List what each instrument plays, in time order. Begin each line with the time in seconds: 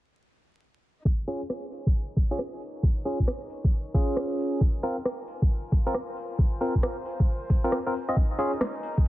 1.05 string section D#4, kick
1.15 string section A#4
1.28 tine electric piano C#4 F4 G#4, open hi-hat
1.50 cross-stick
1.72 open hi-hat
1.86 string section G#5, kick
2.12 string section C#5
2.17 kick, open hi-hat
2.31 tine electric piano C#4 F4 G#4
2.39 cross-stick
2.61 open hi-hat
2.83 kick
3.05 tine electric piano C#4 F4 G#4, open hi-hat
3.20 kick
3.28 cross-stick
3.50 open hi-hat
3.64 kick
3.94 tine electric piano C#4 F4 G#4, kick, open hi-hat
4.17 cross-stick
4.39 open hi-hat
4.61 string section F4, kick
4.83 tine electric piano C4 F4 A#4, open hi-hat
5.05 cross-stick
5.28 open hi-hat
5.42 kick
5.72 kick, open hi-hat
5.86 tine electric piano C4 F4 A#4
5.92 string section C5, cross-stick
6.17 open hi-hat
6.39 kick
6.61 tine electric piano C4 F4 A#4, open hi-hat
6.75 kick
6.83 cross-stick
7.05 open hi-hat
7.20 kick
7.50 kick, open hi-hat
7.64 tine electric piano C4 F4 A#4
7.72 cross-stick
7.86 tine electric piano C4 F4 A#4
7.94 open hi-hat
8.09 tine electric piano C4 F4 D#5
8.16 string section D#4, kick, closed hi-hat
8.39 tine electric piano C#4 F4 G#4, open hi-hat
8.53 closed hi-hat
8.61 cross-stick, snare
8.75 closed hi-hat
8.83 open hi-hat
8.98 kick